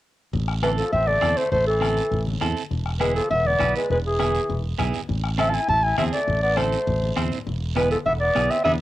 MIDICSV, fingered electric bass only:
0, 0, Header, 1, 2, 480
1, 0, Start_track
1, 0, Key_signature, 0, "minor"
1, 0, Tempo, 297324
1, 536, Time_signature, 4, 2, 24, 8
1, 14224, End_track
2, 0, Start_track
2, 0, Title_t, "Fingered electric bass"
2, 0, Program_c, 0, 33
2, 533, Note_on_c, 0, 33, 96
2, 1302, Note_off_c, 0, 33, 0
2, 1494, Note_on_c, 0, 33, 99
2, 1879, Note_off_c, 0, 33, 0
2, 1977, Note_on_c, 0, 40, 89
2, 2169, Note_off_c, 0, 40, 0
2, 2452, Note_on_c, 0, 33, 99
2, 3221, Note_off_c, 0, 33, 0
2, 3418, Note_on_c, 0, 33, 102
2, 3801, Note_off_c, 0, 33, 0
2, 3896, Note_on_c, 0, 40, 82
2, 4088, Note_off_c, 0, 40, 0
2, 4379, Note_on_c, 0, 28, 95
2, 5146, Note_off_c, 0, 28, 0
2, 5339, Note_on_c, 0, 28, 109
2, 5721, Note_off_c, 0, 28, 0
2, 5822, Note_on_c, 0, 35, 95
2, 6011, Note_off_c, 0, 35, 0
2, 6300, Note_on_c, 0, 28, 89
2, 7066, Note_off_c, 0, 28, 0
2, 7259, Note_on_c, 0, 28, 103
2, 7641, Note_off_c, 0, 28, 0
2, 7735, Note_on_c, 0, 35, 87
2, 7927, Note_off_c, 0, 35, 0
2, 8219, Note_on_c, 0, 33, 96
2, 8985, Note_off_c, 0, 33, 0
2, 9176, Note_on_c, 0, 33, 101
2, 9560, Note_off_c, 0, 33, 0
2, 9652, Note_on_c, 0, 40, 86
2, 9845, Note_off_c, 0, 40, 0
2, 10134, Note_on_c, 0, 33, 90
2, 10902, Note_off_c, 0, 33, 0
2, 11094, Note_on_c, 0, 33, 106
2, 11477, Note_off_c, 0, 33, 0
2, 11571, Note_on_c, 0, 40, 90
2, 11764, Note_off_c, 0, 40, 0
2, 12054, Note_on_c, 0, 28, 89
2, 12821, Note_off_c, 0, 28, 0
2, 13012, Note_on_c, 0, 28, 105
2, 13396, Note_off_c, 0, 28, 0
2, 13496, Note_on_c, 0, 35, 88
2, 13687, Note_off_c, 0, 35, 0
2, 13973, Note_on_c, 0, 40, 98
2, 14152, Note_off_c, 0, 40, 0
2, 14224, End_track
0, 0, End_of_file